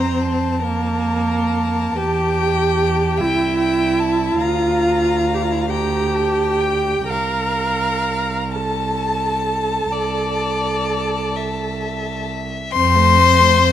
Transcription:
0.00 1.95 F2 soft
0.00 0.65 C4 medium
0.00 0.62 C5 medium
0.00 0.24 A#5 soft
0.22 3.19 A5 soft
0.62 1.98 A#3 medium
0.62 1.98 A#4 soft
1.97 3.21 E2 soft
1.97 3.22 G4 medium
1.97 3.19 G5 medium
3.18 4.40 C2 soft
3.18 4.42 E4 medium
3.18 4.39 E5 medium
3.18 3.58 G5 medium
3.58 4.01 G5 soft
4.00 4.42 A5 soft
4.39 7.05 D2 medium
4.39 5.36 F4 medium
4.39 5.71 F5 medium
4.39 5.68 A#5 soft
5.34 5.44 G4 medium
5.42 5.53 F4 medium
5.52 5.63 E4 soft
5.61 5.70 F4 soft
5.69 7.06 G4 medium
5.69 7.07 G5 medium
5.69 6.17 A#5 soft
6.15 6.62 A5 soft
6.60 7.11 G5 soft
7.07 9.90 C2 soft
7.07 8.56 A#4 medium
7.07 8.45 F5 soft
7.07 8.53 A#5 medium
8.52 12.30 A4 soft
8.52 12.29 A5 soft
8.52 9.94 A5 medium
9.92 12.50 C2 soft
9.92 11.37 D5 medium
11.35 12.74 E5 soft
12.72 13.72 F2 medium
12.72 12.98 C4 medium
12.72 13.72 C5 loud
12.72 13.72 C6 loud
12.96 13.19 A3 medium
13.17 13.41 C4 medium
13.40 13.61 A3 medium
13.63 13.72 C4 medium

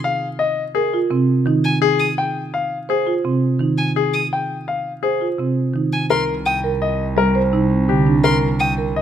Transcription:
0.04 0.27 F5 medium
0.39 0.62 D#5 medium
0.75 0.98 G#4 medium
0.75 0.98 A#4 medium
0.94 1.16 F4 medium
1.10 1.34 C3 medium
1.10 1.34 C4 medium
1.46 1.69 D#3 medium
1.46 1.70 D#4 medium
1.64 1.78 G#5 medium
1.82 2.05 G#4 medium
1.99 2.13 D#6 medium
2.18 2.41 G5 medium
2.54 2.77 F5 soft
2.89 3.12 G#4 medium
2.89 3.12 C5 medium
3.07 3.30 F4 soft
3.25 3.48 C3 soft
3.25 3.48 C4 medium
3.59 3.83 D#3 soft
3.59 3.84 D#4 soft
3.78 3.91 G#5 soft
3.96 4.19 G#4 medium
4.14 4.27 D#6 soft
4.33 4.55 G5 soft
4.68 4.91 F5 soft
5.03 5.26 G#4 medium
5.03 5.27 C5 medium
5.21 5.44 F4 soft
5.38 5.62 C3 soft
5.38 5.62 C4 soft
5.74 5.98 D#3 soft
5.74 5.98 D#4 soft
5.93 6.06 G#5 soft
6.10 9.02 C2 medium
6.10 6.34 A#4 medium
6.10 6.24 C6 medium
6.46 6.69 G5 medium
6.46 6.59 D#6 medium
6.64 6.87 A#4 medium
6.82 7.05 D#5 medium
7.17 7.40 G3 medium
7.17 7.41 A#4 medium
7.35 7.59 C5 medium
7.53 7.76 C3 soft
7.53 7.76 D#4 medium
7.71 7.94 C4 soft
7.89 8.12 D3 medium
7.89 8.12 G4 soft
8.07 8.30 D4 medium
8.24 8.48 A#4 medium
8.24 8.38 C6 medium
8.60 8.84 G5 soft
8.60 8.73 D#6 medium
8.78 9.01 A#4 medium
8.96 9.02 D#5 medium

